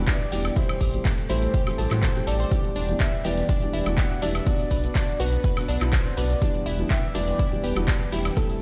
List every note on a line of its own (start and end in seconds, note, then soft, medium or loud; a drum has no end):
0.00 0.14 E1 medium
0.00 0.11 E3 loud
0.00 0.54 E3 medium
0.00 0.11 G3 medium
0.00 0.11 B3 medium
0.00 0.52 B3 medium
0.00 0.11 D4 medium
0.00 0.52 D4 medium
0.00 0.11 F#4 loud
0.00 4.43 G4 loud
0.07 0.15 E4 medium
0.07 0.53 D5 loud
0.07 0.15 E5 medium
0.07 kick loud
0.07 snare loud
0.07 clap loud
0.07 closed hi-hat medium
0.07 shaker medium
0.21 shaker soft
0.32 0.50 E1 medium
0.32 0.54 E3 medium
0.32 0.54 G3 medium
0.32 0.54 B3 medium
0.32 0.54 D4 medium
0.32 0.40 G4 medium
0.32 0.54 G4 medium
0.32 0.40 G5 medium
0.32 closed hi-hat medium
0.32 open hi-hat loud
0.45 snare medium
0.45 closed hi-hat medium
0.45 high woodblock medium
0.45 shaker medium
0.56 0.90 E3 medium
0.56 0.90 G3 medium
0.56 0.90 A3 medium
0.56 2.50 A3 medium
0.56 0.90 C4 medium
0.56 2.50 C4 medium
0.56 0.64 E4 medium
0.56 0.90 G4 loud
0.56 1.02 C5 medium
0.56 0.64 E5 medium
0.56 kick loud
0.56 closed hi-hat medium
0.56 open hi-hat medium
0.56 shaker medium
0.69 closed hi-hat soft
0.69 high woodblock medium
0.69 shaker soft
0.81 0.99 A1 loud
0.81 0.89 G4 medium
0.81 0.89 G5 medium
0.81 kick medium
0.81 closed hi-hat medium
0.81 open hi-hat loud
0.93 1.08 E3 medium
0.93 1.08 G3 medium
0.93 1.08 A3 medium
0.93 1.08 C4 medium
0.93 1.08 G4 medium
0.93 closed hi-hat soft
0.93 closed hi-hat medium
0.93 shaker medium
1.05 1.13 A4 medium
1.05 1.13 A5 medium
1.05 kick loud
1.05 snare loud
1.05 clap loud
1.05 closed hi-hat medium
1.05 shaker medium
1.18 closed hi-hat soft
1.18 shaker soft
1.28 1.48 A1 loud
1.28 1.64 E3 loud
1.28 1.64 G3 medium
1.28 1.64 A3 medium
1.28 1.64 C4 medium
1.28 1.37 E4 medium
1.28 1.64 C5 loud
1.28 1.99 C5 loud
1.28 1.37 E5 medium
1.28 closed hi-hat medium
1.28 open hi-hat loud
1.42 closed hi-hat soft
1.42 closed hi-hat medium
1.42 shaker medium
1.54 1.62 G4 medium
1.54 1.62 G5 medium
1.54 kick loud
1.54 closed hi-hat medium
1.54 shaker medium
1.66 1.76 E3 medium
1.66 1.76 G3 medium
1.66 1.76 A3 medium
1.66 1.76 C4 medium
1.66 1.76 G4 medium
1.66 snare soft
1.66 closed hi-hat soft
1.66 high woodblock medium
1.66 shaker soft
1.78 1.88 A1 medium
1.78 1.88 E3 medium
1.78 1.88 G3 medium
1.78 1.88 A3 medium
1.78 1.88 C4 medium
1.78 1.88 A4 medium
1.78 1.90 A5 loud
1.78 1.90 A6 medium
1.78 closed hi-hat medium
1.78 open hi-hat loud
1.91 2.09 A2 medium
1.91 2.12 E3 medium
1.91 2.12 G3 medium
1.91 2.12 A3 medium
1.91 2.12 C4 medium
1.91 2.12 F#4 loud
1.91 clap soft
1.91 closed hi-hat medium
1.91 high woodblock medium
1.91 shaker medium
2.03 2.11 A4 medium
2.03 2.25 C5 medium
2.03 2.11 A5 medium
2.03 kick loud
2.03 snare loud
2.03 clap loud
2.03 closed hi-hat medium
2.03 closed hi-hat loud
2.03 shaker medium
2.15 2.49 E3 medium
2.15 2.49 G3 medium
2.15 2.49 A3 medium
2.15 2.49 C4 medium
2.15 2.49 G4 medium
2.15 2.23 G5 medium
2.15 2.23 G6 medium
2.15 closed hi-hat soft
2.15 shaker soft
2.27 2.45 A1 loud
2.27 2.35 A4 medium
2.27 2.96 D5 loud
2.27 2.35 A5 medium
2.27 closed hi-hat medium
2.27 open hi-hat loud
2.39 2.50 C5 medium
2.39 2.50 C6 medium
2.39 snare medium
2.39 closed hi-hat soft
2.39 shaker medium
2.51 2.86 E3 medium
2.51 4.45 E3 medium
2.51 2.86 G3 medium
2.51 2.86 B3 medium
2.51 8.33 B3 medium
2.51 2.86 D4 medium
2.51 6.38 D4 medium
2.51 2.59 G4 medium
2.51 2.86 G4 loud
2.51 2.59 G5 medium
2.51 kick loud
2.51 closed hi-hat medium
2.51 shaker medium
2.64 closed hi-hat soft
2.64 shaker soft
2.76 2.94 E1 loud
2.76 2.84 D4 medium
2.76 2.84 D5 medium
2.76 closed hi-hat medium
2.76 open hi-hat loud
2.89 3.04 E3 medium
2.89 3.04 G3 medium
2.89 3.04 B3 medium
2.89 3.04 D4 medium
2.89 3.04 G4 medium
2.89 closed hi-hat medium
2.89 shaker medium
3.00 3.08 E4 medium
3.00 3.08 E5 medium
3.00 3.26 E5 loud
3.00 kick loud
3.00 snare loud
3.00 clap loud
3.00 closed hi-hat medium
3.00 shaker medium
3.13 shaker soft
3.25 3.43 E1 loud
3.25 3.59 E3 loud
3.25 3.59 G3 medium
3.25 3.59 B3 medium
3.25 3.59 D4 medium
3.25 3.32 G4 medium
3.25 3.59 B4 loud
3.25 3.49 D5 loud
3.25 3.32 G5 medium
3.25 closed hi-hat medium
3.25 open hi-hat loud
3.37 snare soft
3.37 closed hi-hat medium
3.37 shaker medium
3.49 3.57 D4 medium
3.49 3.57 D5 medium
3.49 3.99 D5 loud
3.49 kick loud
3.49 closed hi-hat medium
3.49 shaker medium
3.62 3.84 E3 medium
3.62 3.84 G3 medium
3.62 3.84 B3 medium
3.62 3.84 D4 medium
3.62 3.84 G4 medium
3.62 closed hi-hat soft
3.62 shaker soft
3.73 3.83 E1 medium
3.73 3.81 E4 medium
3.73 3.81 E5 medium
3.73 closed hi-hat medium
3.73 open hi-hat loud
3.86 4.04 E1 medium
3.86 4.01 E3 medium
3.86 4.01 G3 medium
3.86 4.01 B3 medium
3.86 4.01 D4 medium
3.86 4.01 F#4 loud
3.86 closed hi-hat medium
3.86 high woodblock medium
3.86 shaker medium
3.97 4.06 G4 medium
3.97 4.22 F#5 loud
3.97 4.06 G5 medium
3.97 kick loud
3.97 snare loud
3.97 clap loud
3.97 closed hi-hat medium
3.97 shaker medium
4.11 shaker soft
4.22 4.40 E1 medium
4.22 4.44 E3 medium
4.22 4.44 G3 medium
4.22 4.44 B3 medium
4.22 4.30 D4 medium
4.22 4.44 D4 medium
4.22 4.44 G4 medium
4.22 4.30 D5 medium
4.22 4.45 E5 loud
4.22 closed hi-hat medium
4.22 open hi-hat loud
4.35 snare medium
4.35 closed hi-hat medium
4.35 high woodblock medium
4.35 shaker medium
4.47 4.81 B3 medium
4.47 4.81 D4 medium
4.47 4.81 F#4 loud
4.47 4.54 F#4 medium
4.47 6.40 F#4 loud
4.47 5.21 D5 loud
4.47 4.54 F#5 medium
4.47 kick loud
4.47 closed hi-hat medium
4.47 open hi-hat medium
4.47 shaker medium
4.59 closed hi-hat soft
4.59 shaker soft
4.71 4.89 B1 loud
4.71 4.79 B4 medium
4.71 4.79 B5 medium
4.71 kick medium
4.71 closed hi-hat medium
4.71 open hi-hat loud
4.83 4.99 B3 medium
4.83 4.99 D4 medium
4.83 4.99 F#4 medium
4.83 closed hi-hat soft
4.83 closed hi-hat medium
4.83 shaker medium
4.95 5.03 D4 medium
4.95 5.03 D5 medium
4.95 kick loud
4.95 snare loud
4.95 clap loud
4.95 closed hi-hat medium
4.95 shaker medium
5.09 shaker soft
5.19 5.38 B1 loud
5.19 5.54 B3 loud
5.19 5.54 D4 medium
5.19 5.28 F#4 medium
5.19 5.94 B4 loud
5.19 5.54 B4 loud
5.19 5.28 F#5 medium
5.19 closed hi-hat medium
5.19 open hi-hat loud
5.32 closed hi-hat soft
5.32 closed hi-hat medium
5.32 shaker medium
5.44 5.52 B4 medium
5.44 5.52 B5 medium
5.44 kick loud
5.44 closed hi-hat loud
5.44 closed hi-hat medium
5.44 shaker medium
5.56 5.79 B3 medium
5.56 5.79 D4 medium
5.56 5.79 F#4 medium
5.56 snare medium
5.56 closed hi-hat soft
5.56 high woodblock medium
5.56 shaker soft
5.68 5.78 B1 medium
5.68 5.76 D4 medium
5.68 5.76 D5 medium
5.68 closed hi-hat medium
5.68 open hi-hat loud
5.81 5.99 B1 medium
5.81 5.96 B3 loud
5.81 5.96 D4 medium
5.81 5.96 E4 loud
5.81 clap soft
5.81 closed hi-hat medium
5.81 high woodblock medium
5.81 shaker medium
5.92 6.01 F#4 medium
5.92 6.19 C5 medium
5.92 6.01 F#5 medium
5.92 kick loud
5.92 snare loud
5.92 clap loud
5.92 closed hi-hat medium
5.92 shaker medium
6.06 closed hi-hat soft
6.06 shaker soft
6.17 6.35 B1 medium
6.17 6.39 B3 medium
6.17 6.39 D4 medium
6.17 6.39 F#4 medium
6.17 6.25 B4 medium
6.17 6.66 D5 medium
6.17 6.25 B5 medium
6.17 closed hi-hat medium
6.17 open hi-hat loud
6.30 snare medium
6.30 closed hi-hat medium
6.30 shaker medium
6.41 8.35 E3 medium
6.41 6.76 E3 medium
6.41 6.76 G3 medium
6.41 6.76 B3 medium
6.41 6.49 D4 medium
6.41 8.35 D4 medium
6.41 6.76 D4 medium
6.41 6.76 G4 loud
6.41 8.62 G4 medium
6.41 6.49 D5 medium
6.41 kick loud
6.41 closed hi-hat medium
6.41 shaker medium
6.55 closed hi-hat soft
6.55 shaker soft
6.66 6.84 E1 loud
6.66 6.74 E4 medium
6.66 6.74 E5 medium
6.66 closed hi-hat medium
6.66 open hi-hat loud
6.79 6.94 E3 medium
6.79 6.94 G3 medium
6.79 6.94 B3 medium
6.79 6.94 D4 medium
6.79 6.94 G4 medium
6.79 closed hi-hat medium
6.79 shaker medium
6.90 6.98 G4 medium
6.90 7.13 E5 loud
6.90 6.98 G5 medium
6.90 kick loud
6.90 snare loud
6.90 clap loud
6.90 closed hi-hat medium
6.90 shaker medium
7.03 shaker soft
7.15 7.33 E1 loud
7.15 7.49 E3 loud
7.15 7.49 G3 medium
7.15 7.49 B3 medium
7.15 7.49 D4 medium
7.15 7.23 D4 medium
7.15 7.49 B4 loud
7.15 7.60 D5 loud
7.15 7.23 D5 medium
7.15 closed hi-hat medium
7.15 open hi-hat loud
7.28 snare soft
7.28 closed hi-hat medium
7.28 shaker medium
7.39 7.47 E4 medium
7.39 7.47 E5 medium
7.39 kick loud
7.39 closed hi-hat medium
7.39 shaker medium
7.52 7.74 E3 medium
7.52 7.74 G3 medium
7.52 7.74 B3 medium
7.52 7.74 D4 medium
7.52 7.74 G4 medium
7.52 closed hi-hat soft
7.52 shaker soft
7.64 7.73 E1 medium
7.64 7.71 G4 medium
7.64 8.09 B4 medium
7.64 7.71 G5 medium
7.64 closed hi-hat medium
7.64 open hi-hat loud
7.76 7.94 E1 medium
7.76 7.91 E3 loud
7.76 7.91 G3 medium
7.76 7.91 B3 medium
7.76 7.91 D4 medium
7.76 7.91 F#4 loud
7.76 closed hi-hat medium
7.76 high woodblock medium
7.76 shaker medium
7.88 7.96 D4 medium
7.88 7.96 D5 medium
7.88 kick loud
7.88 snare loud
7.88 clap loud
7.88 closed hi-hat medium
7.88 shaker medium
8.01 shaker soft
8.12 8.31 E1 medium
8.12 8.34 E3 medium
8.12 8.34 G3 medium
8.12 8.34 B3 medium
8.12 8.34 D4 medium
8.12 8.20 E4 medium
8.12 8.34 G4 medium
8.12 8.20 E5 medium
8.12 closed hi-hat medium
8.12 open hi-hat loud
8.25 snare medium
8.25 closed hi-hat medium
8.25 high woodblock medium
8.25 shaker medium
8.37 8.62 E3 medium
8.37 8.62 G3 medium
8.37 8.62 A3 medium
8.37 8.62 C4 medium
8.37 8.62 G4 loud
8.37 8.45 A4 medium
8.37 8.62 A4 loud
8.37 8.45 A5 medium
8.37 kick loud
8.37 closed hi-hat medium
8.37 open hi-hat medium
8.37 shaker medium
8.50 closed hi-hat soft
8.50 shaker soft